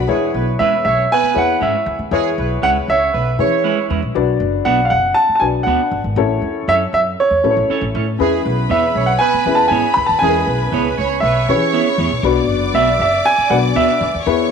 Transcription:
0.07 E2 G#3 E4 G#4 B4 C#5
0.34 B1 B3 B4
0.59 E2 G#3 B3 C#4 E4 B4 E5
0.85 B1 C#4 C#5 E5
1.11 B3 B4 G#5
1.23 muted upright bass stroke
1.34 E2 E4 G#4 B4 C#5 F#5
1.60 G#2 G#3 C#4 E4 B4 E5
1.86 D2
1.99 D#2
2.11 E2 G#3 E4 G#4 B4 C#5
2.37 B1 B3 B4
2.62 C#2 G#3 B3 C#4 E4 B4 F#5
2.88 C#2 C#4 C#5 E5
3.13 B1 B3 B4
3.38 E3 C#4 E4 G#4 B4 C#5
3.64 G#3 C#4 E4 B4
3.90 E2 G#3 C#4 E4 B4
4.03 A#1
4.15 B1 D4 F#4 B4 D5
4.40 F#1
4.65 B1 B3 D4 F#4 B4 F#5
4.85 F5
4.90 F#1 F#5
5.14 A5
5.29 muted upright bass stroke
5.35 A5
5.40 B1 D4 F#4 B4 D5 G#5
5.63 D2 B3 D4 F#4 F#5
5.68 B4
5.91 G1
6.04 G#1
6.16 A1 C#4 E4 A4 C#5
6.42 E2
6.68 F#2 C#4 E4 A4 C#5 E5
6.93 F#2 E5
7.20 C#5
7.31 E2
7.43 A2 C#4 E4 A4 B4
7.51 C#5
7.57 A1
7.70 C#4 E4 A4 C#5, muted upright bass stroke
7.81 A1
7.95 A2 C#4 E4 A4 C#5
8.19 E2 G#3 C#4 E4 G#4 B4 B5
8.44 B1 B3 B4
8.69 E2 B3 E4 G#4 B4 C#5 E5
8.94 B1 C#4 C#5
9.06 F#5
9.19 B3 B4 G#5
9.34 muted upright bass stroke
9.46 E2 C#4 E4 G#4 B4
9.55 A5
9.68 G#2 B3 E4 G#5
9.72 G#4 C#5
9.94 D2 B5
10.06 D#2 A5
10.19 E2 G#3 C#4 E4 G#4 A#4 G#5
10.29 B4
10.46 B1 B3 B4
10.71 C#2 B3 E4 G#4 B4 C#5
10.97 C#2 C#4 C#5
11.20 B1 B3 B4 C#5 E5 C#6
11.47 E3 C#4 E4 G4 B4 C#5
11.55 G#4
11.73 B3 E4 G#4 C#5
11.98 E2 B3 E4 G#4 C#5
12.10 A#1
12.23 B1 B3 D4 F#4 B4 D5 D6
12.49 F#1
12.74 B1 B3 D4 F#4 B4 E5
12.99 F#1 E5
13.26 G#5
13.38 muted upright bass stroke
13.50 B1 B3 D4 F#4 B4 F#5
13.75 D2 B3 D4 F#4 B4 E5
14.01 D2
14.14 D#2
14.26 E2 B3 E4 G#4 B4 C#5 C#6

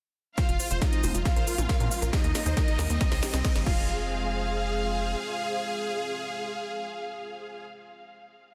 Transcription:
0.38 G#3 C4 F4 C5 F5, kick, snare, closed hi-hat, riser, shaker
0.49 F1 F4, closed hi-hat
0.60 F4 C5, open hi-hat, shaker
0.71 F1 F4 C5, closed hi-hat, shaker
0.82 D#4 F4 D#5, kick, snare, closed hi-hat, shaker
0.93 C4 F4, closed hi-hat
1.03 F1 F4 C5, open hi-hat, mid tom, shaker
1.14 F1 F4, closed hi-hat, shaker
1.25 A#3 C#4 F4 F5, kick, snare, closed hi-hat, shaker
1.36 A#1 A#4 C5, closed hi-hat
1.47 F4 A#4, open hi-hat, shaker
1.58 A#1 F4, closed hi-hat, mid tom, shaker
1.69 A#4, kick, snare, closed hi-hat, shaker
1.80 A#2 F4 A#4, closed hi-hat, mid tom
1.91 F4 F5, open hi-hat, shaker
2.02 A#1 F4 A#4, closed hi-hat, shaker
2.13 G3 D#4 G4 A#4 D#5, kick, snare, closed hi-hat, shaker
2.24 D#2 A#3 D#4, closed hi-hat
2.35 D#4, snare, open hi-hat, shaker
2.46 D#2 D#4 C5, closed hi-hat, shaker
2.57 D#4 A#4, kick, snare, closed hi-hat, shaker
2.68 D#4, closed hi-hat
2.79 D#2 D#4 A#4, snare, open hi-hat, mid tom, shaker
2.90 D#2 A#3 C4, closed hi-hat, shaker
3.01 E3 G3 C4 C5, kick, snare, closed hi-hat, shaker
3.11 C2 C4 C5, snare, open hi-hat
3.23 C4 G4, snare, open hi-hat, shaker
3.34 C2 C4, snare, closed hi-hat, shaker
3.44 C4 A#4, kick, snare, closed hi-hat, shaker
3.55 G1 G3 C4, snare, closed hi-hat
3.66 F1 G#3 C4 F4 G#4 C5 F5, kick, crash

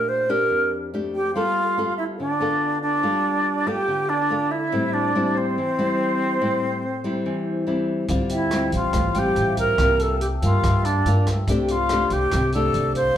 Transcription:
Already playing: A#2 A3 D4 G4 A#4
0.09 C5
0.29 D4 G4 A#4
0.50 F2
0.94 A3 D4 G4
1.13 G4 G5
1.33 G3 B3 F4 A4 F5
1.78 B3 F4 A4
1.97 E4 E5
2.19 D3 D4 D5
2.41 B3 F4 A4
2.82 D4 D5
3.03 G3 B3 F4 A4
3.67 B3 F4 G4 A4 G5
3.88 D3
4.09 D4 D5
4.30 B3 F4 A4
4.51 E4 E5
4.72 A2 G3 C4 E4
4.92 D4 D5
5.15 G3 C4 E4
5.35 C4 C5
5.58 E3
5.79 G3 C4 E4
6.41 A2 G3 C4 E4
7.04 G3 C4 E4
7.26 E3
7.67 G3 C4 E4
8.08 D2 D3 G3 C4 F4, kick, closed hi-hat
8.29 E4 E5 G5, closed hi-hat
8.51 G3 C4 F4, cross-stick, closed hi-hat
8.72 A1 F4 F5, kick, closed hi-hat
8.93 A1 A2 F5, kick, cross-stick, closed hi-hat
9.10 G5
9.14 G3 C4 F4 G5, closed hi-hat
9.19 G4
9.36 A1 E5, closed hi-hat
9.57 A#4 A#5, kick, closed hi-hat
9.78 C2 C3 G3 A#3 F4, kick, cross-stick, closed hi-hat
9.99 A4 A5 E6, closed hi-hat
10.16 G5
10.20 G4 G5, closed hi-hat
10.32 A5
10.42 G2 G3 A#3 F4 F5, kick, closed hi-hat
10.63 G2, kick, cross-stick, closed hi-hat
10.84 D4 D5, closed hi-hat
11.05 G2 G3 A#3 F4, closed hi-hat
11.27 kick, cross-stick, closed hi-hat
11.47 C2 C3 A3 D4 G4, kick, closed hi-hat
11.61 G4 G5
11.68 F4 F5, closed hi-hat
11.89 A3 D4 G4, cross-stick, closed hi-hat
12.10 C2 G4 G5, kick, closed hi-hat
12.31 C2 C3, kick, cross-stick, closed hi-hat
12.52 A3 D4 G4 A4 A5, closed hi-hat
12.74 C2 D5, closed hi-hat
12.95 C5 F5 C6, kick, closed hi-hat

